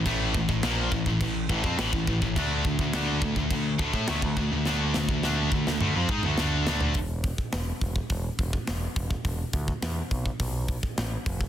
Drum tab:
CC |x---x---x---x---|x---x---x---x---|----------------|----------------|
HH |----------------|----------------|----------------|o-o-o-o-o-o-o-o-|
SD |----o-------o---|----o-------o---|o-o-o--o----o-o-|----o-------o---|
T2 |----------------|----------------|--------o--o----|----------------|
FT |----------------|----------------|---------------o|----------------|
BD |o-oo--ooo-oo-ooo|o-oo--ooo-oo-oo-|---o--o---o-----|o-oo--ooo-oo--oo|

CC |----------------|
HH |o-o-o-o-o-o-o-o-|
SD |----o-------o---|
T2 |----------------|
FT |----------------|
BD |o-oo--ooo-oo--oo|